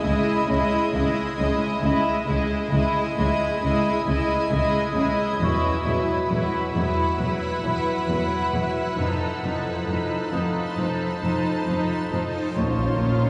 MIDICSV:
0, 0, Header, 1, 14, 480
1, 0, Start_track
1, 0, Tempo, 895522
1, 983, Time_signature, 4, 2, 24, 8
1, 7128, End_track
2, 0, Start_track
2, 0, Title_t, "Violin section"
2, 0, Program_c, 0, 48
2, 2908, Note_on_c, 0, 83, 40
2, 2909, Note_on_c, 0, 88, 42
2, 3858, Note_on_c, 0, 90, 34
2, 6005, Note_off_c, 0, 88, 0
2, 6479, Note_off_c, 0, 90, 0
2, 6484, Note_off_c, 0, 83, 0
2, 6748, Note_on_c, 0, 89, 36
2, 7128, Note_off_c, 0, 89, 0
2, 7128, End_track
3, 0, Start_track
3, 0, Title_t, "Celesta"
3, 0, Program_c, 1, 8
3, 0, Control_c, 1, 64, 127
3, 270, Note_on_c, 1, 83, 36
3, 1685, Note_off_c, 1, 83, 0
3, 2912, Control_c, 1, 64, 0
3, 2914, Note_on_c, 1, 85, 38
3, 3001, Control_c, 1, 64, 127
3, 4327, Note_off_c, 1, 85, 0
3, 4833, Control_c, 1, 64, 0
3, 4932, Control_c, 1, 64, 127
3, 5537, Note_on_c, 1, 77, 23
3, 5538, Note_on_c, 1, 87, 30
3, 6718, Note_off_c, 1, 77, 0
3, 6719, Note_off_c, 1, 87, 0
3, 6743, Note_on_c, 1, 85, 30
3, 6754, Control_c, 1, 64, 0
3, 6826, Control_c, 1, 64, 127
3, 7128, Note_off_c, 1, 85, 0
3, 7128, End_track
4, 0, Start_track
4, 0, Title_t, "Ambient pad"
4, 0, Program_c, 2, 92
4, 0, Note_on_c, 2, 64, 50
4, 0, Note_on_c, 2, 75, 52
4, 0, Note_on_c, 2, 80, 52
4, 965, Note_off_c, 2, 64, 0
4, 970, Note_off_c, 2, 75, 0
4, 970, Note_off_c, 2, 80, 0
4, 976, Note_on_c, 2, 75, 52
4, 976, Note_on_c, 2, 80, 53
4, 981, Note_on_c, 2, 64, 47
4, 2878, Note_off_c, 2, 75, 0
4, 2878, Note_off_c, 2, 80, 0
4, 2881, Note_off_c, 2, 64, 0
4, 2901, Note_on_c, 2, 78, 46
4, 2904, Note_on_c, 2, 64, 53
4, 2904, Note_on_c, 2, 71, 54
4, 4802, Note_off_c, 2, 64, 0
4, 4822, Note_off_c, 2, 78, 0
4, 4824, Note_off_c, 2, 71, 0
4, 4825, Note_on_c, 2, 63, 48
4, 4825, Note_on_c, 2, 72, 47
4, 4825, Note_on_c, 2, 81, 47
4, 6744, Note_off_c, 2, 63, 0
4, 6744, Note_off_c, 2, 72, 0
4, 6744, Note_off_c, 2, 81, 0
4, 7128, End_track
5, 0, Start_track
5, 0, Title_t, "Violin section"
5, 0, Program_c, 3, 48
5, 35, Note_on_c, 3, 75, 49
5, 261, Note_off_c, 3, 75, 0
5, 267, Note_on_c, 3, 75, 43
5, 500, Note_off_c, 3, 75, 0
5, 514, Note_on_c, 3, 75, 41
5, 744, Note_off_c, 3, 75, 0
5, 757, Note_on_c, 3, 75, 48
5, 986, Note_off_c, 3, 75, 0
5, 997, Note_on_c, 3, 75, 41
5, 1222, Note_off_c, 3, 75, 0
5, 1228, Note_on_c, 3, 75, 45
5, 1461, Note_off_c, 3, 75, 0
5, 1476, Note_on_c, 3, 75, 50
5, 1705, Note_off_c, 3, 75, 0
5, 1715, Note_on_c, 3, 75, 42
5, 1944, Note_off_c, 3, 75, 0
5, 1951, Note_on_c, 3, 75, 48
5, 2182, Note_off_c, 3, 75, 0
5, 2193, Note_on_c, 3, 75, 43
5, 2423, Note_off_c, 3, 75, 0
5, 2431, Note_on_c, 3, 75, 47
5, 2662, Note_off_c, 3, 75, 0
5, 2668, Note_on_c, 3, 75, 45
5, 2901, Note_off_c, 3, 75, 0
5, 2913, Note_on_c, 3, 71, 43
5, 3143, Note_off_c, 3, 71, 0
5, 3153, Note_on_c, 3, 71, 38
5, 3379, Note_off_c, 3, 71, 0
5, 3385, Note_on_c, 3, 71, 39
5, 3619, Note_off_c, 3, 71, 0
5, 3637, Note_on_c, 3, 71, 34
5, 3865, Note_off_c, 3, 71, 0
5, 3877, Note_on_c, 3, 71, 37
5, 4101, Note_off_c, 3, 71, 0
5, 4107, Note_on_c, 3, 71, 36
5, 4340, Note_off_c, 3, 71, 0
5, 4355, Note_on_c, 3, 71, 33
5, 4584, Note_off_c, 3, 71, 0
5, 4596, Note_on_c, 3, 71, 33
5, 4825, Note_off_c, 3, 71, 0
5, 4836, Note_on_c, 3, 69, 31
5, 5058, Note_off_c, 3, 69, 0
5, 5064, Note_on_c, 3, 69, 30
5, 5299, Note_off_c, 3, 69, 0
5, 5311, Note_on_c, 3, 69, 30
5, 5542, Note_off_c, 3, 69, 0
5, 5553, Note_on_c, 3, 69, 30
5, 5783, Note_off_c, 3, 69, 0
5, 5796, Note_on_c, 3, 69, 32
5, 6021, Note_off_c, 3, 69, 0
5, 6028, Note_on_c, 3, 69, 28
5, 6261, Note_off_c, 3, 69, 0
5, 6269, Note_on_c, 3, 69, 28
5, 6501, Note_off_c, 3, 69, 0
5, 6515, Note_on_c, 3, 69, 28
5, 6743, Note_on_c, 3, 73, 32
5, 6744, Note_off_c, 3, 69, 0
5, 7128, Note_off_c, 3, 73, 0
5, 7128, End_track
6, 0, Start_track
6, 0, Title_t, "Violin section"
6, 0, Program_c, 4, 48
6, 27, Note_on_c, 4, 64, 48
6, 257, Note_off_c, 4, 64, 0
6, 263, Note_on_c, 4, 64, 49
6, 498, Note_off_c, 4, 64, 0
6, 505, Note_on_c, 4, 64, 45
6, 730, Note_off_c, 4, 64, 0
6, 736, Note_on_c, 4, 64, 44
6, 972, Note_off_c, 4, 64, 0
6, 978, Note_on_c, 4, 64, 53
6, 1212, Note_off_c, 4, 64, 0
6, 1219, Note_on_c, 4, 64, 44
6, 1456, Note_off_c, 4, 64, 0
6, 1463, Note_on_c, 4, 64, 48
6, 1694, Note_off_c, 4, 64, 0
6, 1700, Note_on_c, 4, 64, 43
6, 1937, Note_off_c, 4, 64, 0
6, 1943, Note_on_c, 4, 64, 45
6, 2178, Note_off_c, 4, 64, 0
6, 2187, Note_on_c, 4, 64, 46
6, 2420, Note_off_c, 4, 64, 0
6, 2429, Note_on_c, 4, 64, 43
6, 2660, Note_off_c, 4, 64, 0
6, 2666, Note_on_c, 4, 64, 40
6, 2898, Note_off_c, 4, 64, 0
6, 2904, Note_on_c, 4, 64, 47
6, 3134, Note_off_c, 4, 64, 0
6, 3141, Note_on_c, 4, 64, 36
6, 3375, Note_off_c, 4, 64, 0
6, 3382, Note_on_c, 4, 64, 38
6, 3618, Note_off_c, 4, 64, 0
6, 3630, Note_on_c, 4, 64, 40
6, 3860, Note_off_c, 4, 64, 0
6, 3866, Note_on_c, 4, 64, 35
6, 4100, Note_off_c, 4, 64, 0
6, 4105, Note_on_c, 4, 64, 35
6, 4339, Note_off_c, 4, 64, 0
6, 4347, Note_on_c, 4, 64, 33
6, 4580, Note_off_c, 4, 64, 0
6, 4590, Note_on_c, 4, 64, 32
6, 4821, Note_off_c, 4, 64, 0
6, 4823, Note_on_c, 4, 63, 38
6, 5058, Note_off_c, 4, 63, 0
6, 5071, Note_on_c, 4, 63, 29
6, 5294, Note_off_c, 4, 63, 0
6, 5301, Note_on_c, 4, 63, 29
6, 5531, Note_off_c, 4, 63, 0
6, 5537, Note_on_c, 4, 63, 32
6, 5768, Note_off_c, 4, 63, 0
6, 5774, Note_on_c, 4, 63, 33
6, 6010, Note_off_c, 4, 63, 0
6, 6016, Note_on_c, 4, 63, 33
6, 6253, Note_off_c, 4, 63, 0
6, 6259, Note_on_c, 4, 63, 32
6, 6489, Note_off_c, 4, 63, 0
6, 6496, Note_on_c, 4, 63, 29
6, 6734, Note_off_c, 4, 63, 0
6, 6738, Note_on_c, 4, 65, 48
6, 7128, Note_off_c, 4, 65, 0
6, 7128, End_track
7, 0, Start_track
7, 0, Title_t, "French horn section"
7, 0, Program_c, 5, 60
7, 6734, Note_on_c, 5, 61, 44
7, 6739, Note_on_c, 5, 65, 46
7, 7128, Note_off_c, 5, 61, 0
7, 7128, Note_off_c, 5, 65, 0
7, 7128, End_track
8, 0, Start_track
8, 0, Title_t, "Viola section"
8, 0, Program_c, 6, 48
8, 24, Note_on_c, 6, 56, 47
8, 258, Note_off_c, 6, 56, 0
8, 265, Note_on_c, 6, 56, 49
8, 496, Note_off_c, 6, 56, 0
8, 502, Note_on_c, 6, 56, 45
8, 732, Note_off_c, 6, 56, 0
8, 738, Note_on_c, 6, 56, 46
8, 976, Note_off_c, 6, 56, 0
8, 984, Note_on_c, 6, 56, 46
8, 1219, Note_off_c, 6, 56, 0
8, 1226, Note_on_c, 6, 56, 44
8, 1458, Note_off_c, 6, 56, 0
8, 1465, Note_on_c, 6, 56, 46
8, 1697, Note_off_c, 6, 56, 0
8, 1703, Note_on_c, 6, 56, 49
8, 1938, Note_off_c, 6, 56, 0
8, 1946, Note_on_c, 6, 56, 44
8, 2180, Note_off_c, 6, 56, 0
8, 2191, Note_on_c, 6, 56, 39
8, 2420, Note_off_c, 6, 56, 0
8, 2426, Note_on_c, 6, 56, 49
8, 2660, Note_off_c, 6, 56, 0
8, 2670, Note_on_c, 6, 56, 44
8, 2902, Note_off_c, 6, 56, 0
8, 2905, Note_on_c, 6, 54, 44
8, 3139, Note_off_c, 6, 54, 0
8, 3148, Note_on_c, 6, 54, 41
8, 3377, Note_off_c, 6, 54, 0
8, 3383, Note_on_c, 6, 54, 39
8, 3616, Note_off_c, 6, 54, 0
8, 3622, Note_on_c, 6, 54, 38
8, 3855, Note_off_c, 6, 54, 0
8, 3862, Note_on_c, 6, 54, 38
8, 4098, Note_off_c, 6, 54, 0
8, 4106, Note_on_c, 6, 54, 34
8, 4337, Note_off_c, 6, 54, 0
8, 4344, Note_on_c, 6, 54, 35
8, 4572, Note_off_c, 6, 54, 0
8, 4579, Note_on_c, 6, 54, 32
8, 4816, Note_off_c, 6, 54, 0
8, 4820, Note_on_c, 6, 53, 32
8, 5051, Note_off_c, 6, 53, 0
8, 5058, Note_on_c, 6, 53, 31
8, 5295, Note_off_c, 6, 53, 0
8, 5302, Note_on_c, 6, 53, 29
8, 5538, Note_off_c, 6, 53, 0
8, 5544, Note_on_c, 6, 53, 30
8, 5779, Note_off_c, 6, 53, 0
8, 5785, Note_on_c, 6, 53, 28
8, 6017, Note_off_c, 6, 53, 0
8, 6024, Note_on_c, 6, 53, 29
8, 6257, Note_off_c, 6, 53, 0
8, 6263, Note_on_c, 6, 53, 32
8, 6496, Note_off_c, 6, 53, 0
8, 6502, Note_on_c, 6, 53, 32
8, 6732, Note_off_c, 6, 53, 0
8, 6738, Note_on_c, 6, 53, 37
8, 7128, Note_off_c, 6, 53, 0
8, 7128, End_track
9, 0, Start_track
9, 0, Title_t, "Cello section"
9, 0, Program_c, 7, 48
9, 23, Note_on_c, 7, 49, 46
9, 167, Note_off_c, 7, 49, 0
9, 260, Note_on_c, 7, 61, 46
9, 405, Note_off_c, 7, 61, 0
9, 497, Note_on_c, 7, 49, 63
9, 643, Note_off_c, 7, 49, 0
9, 743, Note_on_c, 7, 61, 46
9, 887, Note_off_c, 7, 61, 0
9, 981, Note_on_c, 7, 49, 60
9, 1125, Note_off_c, 7, 49, 0
9, 1221, Note_on_c, 7, 49, 45
9, 1366, Note_off_c, 7, 49, 0
9, 1464, Note_on_c, 7, 49, 44
9, 1608, Note_off_c, 7, 49, 0
9, 1702, Note_on_c, 7, 49, 65
9, 1846, Note_off_c, 7, 49, 0
9, 1942, Note_on_c, 7, 49, 43
9, 2086, Note_off_c, 7, 49, 0
9, 2182, Note_on_c, 7, 61, 42
9, 2326, Note_off_c, 7, 61, 0
9, 2417, Note_on_c, 7, 49, 53
9, 2563, Note_off_c, 7, 49, 0
9, 2662, Note_on_c, 7, 61, 47
9, 2806, Note_off_c, 7, 61, 0
9, 2899, Note_on_c, 7, 40, 58
9, 3044, Note_off_c, 7, 40, 0
9, 3143, Note_on_c, 7, 40, 42
9, 3287, Note_off_c, 7, 40, 0
9, 3385, Note_on_c, 7, 40, 36
9, 3528, Note_off_c, 7, 40, 0
9, 3624, Note_on_c, 7, 40, 48
9, 3768, Note_off_c, 7, 40, 0
9, 3863, Note_on_c, 7, 40, 33
9, 4007, Note_off_c, 7, 40, 0
9, 4096, Note_on_c, 7, 52, 32
9, 4242, Note_off_c, 7, 52, 0
9, 4340, Note_on_c, 7, 40, 42
9, 4485, Note_off_c, 7, 40, 0
9, 4578, Note_on_c, 7, 52, 33
9, 4724, Note_off_c, 7, 52, 0
9, 4816, Note_on_c, 7, 41, 41
9, 4962, Note_off_c, 7, 41, 0
9, 5057, Note_on_c, 7, 41, 31
9, 5203, Note_off_c, 7, 41, 0
9, 5295, Note_on_c, 7, 41, 30
9, 5441, Note_off_c, 7, 41, 0
9, 5535, Note_on_c, 7, 41, 43
9, 5682, Note_off_c, 7, 41, 0
9, 5773, Note_on_c, 7, 41, 27
9, 5920, Note_off_c, 7, 41, 0
9, 6016, Note_on_c, 7, 53, 32
9, 6162, Note_off_c, 7, 53, 0
9, 6254, Note_on_c, 7, 41, 39
9, 6400, Note_off_c, 7, 41, 0
9, 6499, Note_on_c, 7, 53, 28
9, 6644, Note_off_c, 7, 53, 0
9, 6740, Note_on_c, 7, 46, 52
9, 6885, Note_off_c, 7, 46, 0
9, 6976, Note_on_c, 7, 46, 36
9, 7122, Note_off_c, 7, 46, 0
9, 7128, End_track
10, 0, Start_track
10, 0, Title_t, "Timpani"
10, 0, Program_c, 8, 47
10, 6734, Note_on_c, 8, 46, 68
10, 7128, Note_off_c, 8, 46, 0
10, 7128, End_track
11, 0, Start_track
11, 0, Title_t, "Cello section"
11, 0, Program_c, 10, 48
11, 25, Note_on_c, 10, 37, 49
11, 68, Note_off_c, 10, 37, 0
11, 264, Note_on_c, 10, 37, 44
11, 307, Note_off_c, 10, 37, 0
11, 506, Note_on_c, 10, 37, 52
11, 549, Note_off_c, 10, 37, 0
11, 742, Note_on_c, 10, 37, 46
11, 785, Note_off_c, 10, 37, 0
11, 983, Note_on_c, 10, 37, 51
11, 1026, Note_off_c, 10, 37, 0
11, 1218, Note_on_c, 10, 37, 45
11, 1261, Note_off_c, 10, 37, 0
11, 1456, Note_on_c, 10, 37, 46
11, 1499, Note_off_c, 10, 37, 0
11, 1700, Note_on_c, 10, 37, 52
11, 1743, Note_off_c, 10, 37, 0
11, 1940, Note_on_c, 10, 37, 46
11, 1983, Note_off_c, 10, 37, 0
11, 2179, Note_on_c, 10, 37, 47
11, 2221, Note_off_c, 10, 37, 0
11, 2413, Note_on_c, 10, 37, 46
11, 2456, Note_off_c, 10, 37, 0
11, 2653, Note_on_c, 10, 37, 45
11, 2696, Note_off_c, 10, 37, 0
11, 2894, Note_on_c, 10, 40, 44
11, 2937, Note_off_c, 10, 40, 0
11, 3136, Note_on_c, 10, 40, 44
11, 3179, Note_off_c, 10, 40, 0
11, 3375, Note_on_c, 10, 40, 38
11, 3418, Note_off_c, 10, 40, 0
11, 3617, Note_on_c, 10, 40, 42
11, 3660, Note_off_c, 10, 40, 0
11, 3858, Note_on_c, 10, 40, 39
11, 3901, Note_off_c, 10, 40, 0
11, 4093, Note_on_c, 10, 40, 39
11, 4136, Note_off_c, 10, 40, 0
11, 4335, Note_on_c, 10, 40, 34
11, 4378, Note_off_c, 10, 40, 0
11, 4575, Note_on_c, 10, 40, 35
11, 4618, Note_off_c, 10, 40, 0
11, 4816, Note_on_c, 10, 41, 36
11, 4859, Note_off_c, 10, 41, 0
11, 5055, Note_on_c, 10, 41, 32
11, 5098, Note_off_c, 10, 41, 0
11, 5299, Note_on_c, 10, 41, 31
11, 5342, Note_off_c, 10, 41, 0
11, 5540, Note_on_c, 10, 41, 31
11, 5583, Note_off_c, 10, 41, 0
11, 5780, Note_on_c, 10, 41, 33
11, 5823, Note_off_c, 10, 41, 0
11, 6019, Note_on_c, 10, 41, 31
11, 6062, Note_off_c, 10, 41, 0
11, 6260, Note_on_c, 10, 41, 32
11, 6303, Note_off_c, 10, 41, 0
11, 6501, Note_on_c, 10, 41, 30
11, 6544, Note_off_c, 10, 41, 0
11, 6739, Note_on_c, 10, 46, 35
11, 7128, Note_off_c, 10, 46, 0
11, 7128, End_track
12, 0, Start_track
12, 0, Title_t, "Double bass section"
12, 0, Program_c, 11, 48
12, 29, Note_on_c, 11, 37, 52
12, 72, Note_off_c, 11, 37, 0
12, 269, Note_on_c, 11, 37, 49
12, 312, Note_off_c, 11, 37, 0
12, 510, Note_on_c, 11, 37, 58
12, 553, Note_off_c, 11, 37, 0
12, 751, Note_on_c, 11, 37, 53
12, 794, Note_off_c, 11, 37, 0
12, 980, Note_on_c, 11, 37, 55
12, 1023, Note_off_c, 11, 37, 0
12, 1224, Note_on_c, 11, 37, 55
12, 1266, Note_off_c, 11, 37, 0
12, 1467, Note_on_c, 11, 37, 54
12, 1510, Note_off_c, 11, 37, 0
12, 1705, Note_on_c, 11, 37, 44
12, 1748, Note_off_c, 11, 37, 0
12, 1942, Note_on_c, 11, 37, 47
12, 1985, Note_off_c, 11, 37, 0
12, 2188, Note_on_c, 11, 37, 50
12, 2231, Note_off_c, 11, 37, 0
12, 2429, Note_on_c, 11, 37, 53
12, 2472, Note_off_c, 11, 37, 0
12, 2664, Note_on_c, 11, 37, 53
12, 2707, Note_off_c, 11, 37, 0
12, 2905, Note_on_c, 11, 28, 51
12, 2948, Note_off_c, 11, 28, 0
12, 3143, Note_on_c, 11, 28, 49
12, 3186, Note_off_c, 11, 28, 0
12, 3384, Note_on_c, 11, 28, 47
12, 3427, Note_off_c, 11, 28, 0
12, 3624, Note_on_c, 11, 28, 40
12, 3667, Note_off_c, 11, 28, 0
12, 3860, Note_on_c, 11, 28, 45
12, 3903, Note_off_c, 11, 28, 0
12, 4103, Note_on_c, 11, 28, 36
12, 4146, Note_off_c, 11, 28, 0
12, 4342, Note_on_c, 11, 28, 43
12, 4385, Note_off_c, 11, 28, 0
12, 4578, Note_on_c, 11, 28, 37
12, 4621, Note_off_c, 11, 28, 0
12, 4817, Note_on_c, 11, 29, 34
12, 4860, Note_off_c, 11, 29, 0
12, 5058, Note_on_c, 11, 29, 37
12, 5101, Note_off_c, 11, 29, 0
12, 5302, Note_on_c, 11, 29, 31
12, 5345, Note_off_c, 11, 29, 0
12, 5543, Note_on_c, 11, 29, 32
12, 5586, Note_off_c, 11, 29, 0
12, 5782, Note_on_c, 11, 29, 33
12, 5825, Note_off_c, 11, 29, 0
12, 6022, Note_on_c, 11, 29, 29
12, 6065, Note_off_c, 11, 29, 0
12, 6264, Note_on_c, 11, 29, 35
12, 6307, Note_off_c, 11, 29, 0
12, 6495, Note_on_c, 11, 29, 35
12, 6538, Note_off_c, 11, 29, 0
12, 6735, Note_on_c, 11, 34, 46
12, 7128, Note_off_c, 11, 34, 0
12, 7128, End_track
13, 0, Start_track
13, 0, Title_t, "Reverse cymbal"
13, 0, Program_c, 12, 119
13, 4818, Note_on_c, 12, 60, 36
13, 6741, Note_off_c, 12, 60, 0
13, 7128, End_track
14, 0, Start_track
14, 0, Title_t, "Sub drop"
14, 0, Program_c, 13, 103
14, 6735, Note_on_c, 13, 60, 48
14, 7128, Note_off_c, 13, 60, 0
14, 7128, End_track
0, 0, End_of_file